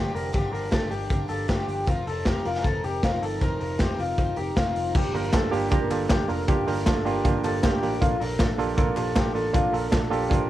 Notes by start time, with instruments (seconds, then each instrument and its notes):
Already playing: picked electric bass G1, twelve-string acoustic guitar G2 D3 F3 A#3 D4 G4, clean electric guitar G4
0.14 picked electric bass F1, clean electric guitar A#4, open hi-hat
0.33 picked electric bass G1, twelve-string acoustic guitar G2 D3 F3 A#3 D4 G4, clean electric guitar G4, kick, closed hi-hat
0.53 picked electric bass G1, clean electric guitar A#4, open hi-hat
0.71 picked electric bass G1, twelve-string acoustic guitar G2 D3 F3 A#3 D4 G4, clean electric guitar A4, kick, snare, closed hi-hat
0.90 picked electric bass G1, twelve-string acoustic guitar F3 A#3 D4 G4, clean electric guitar G4, open hi-hat
1.09 picked electric bass G1, twelve-string acoustic guitar F3 A#3 D4 G4, kick, closed hi-hat
1.28 picked electric bass G1, twelve-string acoustic guitar F3 A#3 D4 G4, clean electric guitar A4, open hi-hat
1.48 picked electric bass G1, twelve-string acoustic guitar G2 D3 F3 A#3 D4 G4, clean electric guitar G4, kick, snare, closed hi-hat
1.68 picked electric bass G1, open hi-hat
1.86 picked electric bass F1, twelve-string acoustic guitar F3 C4 D#4 A#4, clean electric guitar F4, kick, closed hi-hat
2.07 picked electric bass F1, clean electric guitar A4, open hi-hat
2.25 picked electric bass F1, twelve-string acoustic guitar F3 C4 D#4 A#4, clean electric guitar G4, kick, snare, closed hi-hat
2.45 picked electric bass F1, twelve-string acoustic guitar C4 D#4 A#4, clean electric guitar F4, open hi-hat
2.64 picked electric bass F1, twelve-string acoustic guitar F3 C4 D#4 A#4, clean electric guitar A4, kick, closed hi-hat
2.84 picked electric bass F1, twelve-string acoustic guitar C4 D#4 A#4, clean electric guitar G4, open hi-hat
3.03 picked electric bass F1, twelve-string acoustic guitar F3 C4 D#4 A#4, clean electric guitar F4, kick, snare, closed hi-hat
3.22 picked electric bass G1, clean electric guitar A4, open hi-hat
3.41 picked electric bass F1, twelve-string acoustic guitar F3 C4 D#4 A#4, clean electric guitar A#4, kick, closed hi-hat
3.61 picked electric bass F1, clean electric guitar A#4, open hi-hat
3.79 picked electric bass F1, twelve-string acoustic guitar F3 C4 D#4 A#4, clean electric guitar G4, kick, snare, closed hi-hat
3.98 picked electric bass F1, twelve-string acoustic guitar C4 D#4 A#4, clean electric guitar F4, open hi-hat
4.18 picked electric bass F1, twelve-string acoustic guitar F3 C4 D#4 A#4, kick, closed hi-hat
4.36 picked electric bass F1, twelve-string acoustic guitar C4 D#4 A#4, clean electric guitar G4, open hi-hat
4.56 picked electric bass F1, twelve-string acoustic guitar F3 C4 D#4 A#4, clean electric guitar F4, kick, snare, closed hi-hat
4.75 picked electric bass F1, open hi-hat
4.95 picked electric bass G1, reed electric piano A#3 D4 F4 G4, clean electric guitar G4, kick, crash
5.14 picked electric bass G1, reed electric piano A#3 D4 F4 G4, clean electric guitar A#4, open hi-hat
5.33 picked electric bass G1, reed electric piano A#3 D4 F4 G4, clean electric guitar A4, kick, snare, clap, hi-hat pedal, ride
5.51 picked electric bass G1, reed electric piano A#3 D4 F4 G4, clean electric guitar G4, open hi-hat
5.71 picked electric bass G1, reed electric piano A#3 D4 F4 G4, clean electric guitar A#4, kick, hi-hat pedal, ride
5.91 picked electric bass G1, reed electric piano A#3 D4 F4 G4, clean electric guitar A4, clap, open hi-hat
6.09 picked electric bass G1, reed electric piano A#3 D4 F4 A4, clean electric guitar G4, kick, snare, clap, hi-hat pedal, ride
6.28 picked electric bass F1, reed electric piano A#3 D4 F4 A#4, clean electric guitar A#4, open hi-hat
6.48 picked electric bass G1, reed electric piano A#3 D4 F4 G4, clean electric guitar G4, kick, hi-hat pedal, ride
6.67 picked electric bass G1, reed electric piano A#3 D4 F4 G4, clean electric guitar A#4, open hi-hat
6.86 picked electric bass G1, reed electric piano A#3 D4 F4 A4, clean electric guitar A4, kick, snare, clap, hi-hat pedal, ride
7.05 picked electric bass G1, reed electric piano A#3 D4 F4 A#4 F5, clean electric guitar G4, open hi-hat
7.16 reed electric piano G5
7.24 picked electric bass G1, reed electric piano A#3 D4 F4 G4 G5, kick, hi-hat pedal, ride
7.44 picked electric bass G1, reed electric piano A#3 D4 F4 G4 A5, clean electric guitar A4, clap, open hi-hat
7.63 picked electric bass G1, reed electric piano A#3 D4 F4 G4 A#5, clean electric guitar G4, kick, snare, clap, hi-hat pedal, ride
7.83 picked electric bass A1, reed electric piano A#3 D4 F4 G4, open hi-hat
8.01 picked electric bass A#1, reed electric piano A#3 D4 F4 A4, clean electric guitar F4, kick, hi-hat pedal, ride
8.20 picked electric bass A#1, reed electric piano A#3 D4 F4 A4, clean electric guitar A#4, open hi-hat
8.39 picked electric bass A#1, reed electric piano A#3 D4 F4 A4, clean electric guitar A4, kick, snare, clap, hi-hat pedal, ride
8.58 picked electric bass A#1, reed electric piano A#3 D4 F4 A4, clean electric guitar G4, open hi-hat
8.77 picked electric bass A#1, reed electric piano A#3 D4 F4 A4, clean electric guitar A#4, kick, hi-hat pedal, ride
8.96 picked electric bass A#1, reed electric piano A#3 D4 F4 G4, clean electric guitar A4, clap, open hi-hat
9.15 picked electric bass A#1, reed electric piano A#3 D4 F4 A4, clean electric guitar G4, kick, snare, clap, hi-hat pedal, ride
9.35 picked electric bass A1, reed electric piano A#3 D4 F4 A4, clean electric guitar A4, open hi-hat
9.53 picked electric bass A#1, reed electric piano A#3 D4 F4 A4, clean electric guitar F4, kick, hi-hat pedal, ride
9.73 picked electric bass A#1, reed electric piano A#3 D4 F4 A4, clean electric guitar A#4, open hi-hat
9.91 picked electric bass A#1, reed electric piano A#3 D4 F4 A4, clean electric guitar A4, kick, snare, clap, hi-hat pedal, ride
10.10 picked electric bass A#1, reed electric piano A#3 D4 F4 A4, clean electric guitar G4, open hi-hat
10.30 picked electric bass A#1, reed electric piano A#3 D4 F4 C5, kick, hi-hat pedal, ride